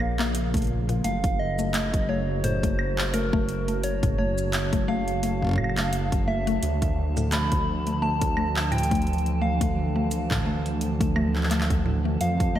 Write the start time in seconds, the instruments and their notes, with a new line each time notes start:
Already playing: detuned saw bass A#1, ambient pad C#3 F3 A#3 F4 A#4, soft synth lead F5
0.00 synth arpeggio sound A#3, high woodblock
0.19 synth arpeggio sound A#3, clap
0.35 closed hi-hat
0.54 synth arpeggio sound A3, kick, closed hi-hat
0.57 closed hi-hat
0.62 closed hi-hat
0.64 closed hi-hat
0.89 synth arpeggio sound A#2, closed hi-hat
1.04 detuned saw bass F#1, synth arpeggio sound A3, soft synth lead F5, closed hi-hat
1.24 kick, closed hi-hat
1.29 ambient pad F#3
1.39 soft synth lead D#5
1.59 synth arpeggio sound A3, shaker
1.67 ambient pad F#4
1.74 synth arpeggio sound A3, clap, closed hi-hat
1.94 kick, closed hi-hat
2.09 synth arpeggio sound A3, soft synth lead C#5
2.44 synth arpeggio sound A2, soft synth lead C5, closed hi-hat
2.63 synth arpeggio sound A3, kick, closed hi-hat
2.79 high woodblock
2.98 clap
3.14 synth arpeggio sound A3, soft synth lead A#4, closed hi-hat, high woodblock
3.33 synth arpeggio sound A3, kick
3.47 ambient pad A5, closed hi-hat
3.68 synth arpeggio sound A3, closed hi-hat
3.84 soft synth lead C#5, closed hi-hat
4.03 synth arpeggio sound A2, kick, closed hi-hat
4.18 synth arpeggio sound A3, soft synth lead C#5
4.38 shaker
4.53 clap, closed hi-hat
4.73 synth arpeggio sound A3, kick, closed hi-hat
4.88 synth arpeggio sound A3, soft synth lead F5
5.08 closed hi-hat
5.23 synth arpeggio sound A3, closed hi-hat
5.42 kick
5.45 kick
5.47 kick
5.49 kick
5.51 kick
5.53 kick
5.56 synth arpeggio sound A2, kick, high woodblock
5.64 high woodblock
5.70 high woodblock
5.77 synth arpeggio sound A3, clap, closed hi-hat, high woodblock
5.81 high woodblock
5.88 high woodblock
5.93 closed hi-hat
6.12 kick, closed hi-hat
6.28 synth arpeggio sound A3, soft synth lead E5
6.47 synth arpeggio sound A3, closed hi-hat
6.63 detuned saw bass D2, ambient pad D3, closed hi-hat
6.82 ambient pad F3, synth arpeggio sound A3, kick, closed hi-hat
7.17 synth arpeggio sound A2, ambient pad E3, shaker
7.32 synth arpeggio sound A3, soft synth lead B5, clap, closed hi-hat
7.52 kick, closed hi-hat
7.87 synth arpeggio sound A3, closed hi-hat
8.02 synth arpeggio sound A3, soft synth lead A5
8.21 kick, closed hi-hat
8.37 synth arpeggio sound A3, high woodblock
8.56 clap
8.72 synth arpeggio sound A2, soft synth lead G5, closed hi-hat, high woodblock
8.78 closed hi-hat
8.83 closed hi-hat
8.91 synth arpeggio sound A3, kick, closed hi-hat
8.95 closed hi-hat
9.02 closed hi-hat
9.07 closed hi-hat
9.13 closed hi-hat
9.18 closed hi-hat
9.26 closed hi-hat
9.41 synth arpeggio sound A3, soft synth lead F5
9.61 synth arpeggio sound A3, kick, closed hi-hat
9.96 synth arpeggio sound A3
10.11 closed hi-hat, shaker
10.31 synth arpeggio sound A2, kick, clap
10.46 synth arpeggio sound A3
10.66 closed hi-hat
10.81 closed hi-hat
11.01 synth arpeggio sound A3, kick, closed hi-hat
11.16 synth arpeggio sound A3, high woodblock
11.36 clap
11.43 clap
11.51 synth arpeggio sound A3, clap, closed hi-hat
11.61 clap
11.70 kick, closed hi-hat
11.86 synth arpeggio sound A2
12.05 synth arpeggio sound A3
12.21 detuned saw bass F2, ambient pad C3, soft synth lead F5, closed hi-hat
12.40 kick, closed hi-hat
12.55 synth arpeggio sound A3, soft synth lead D#5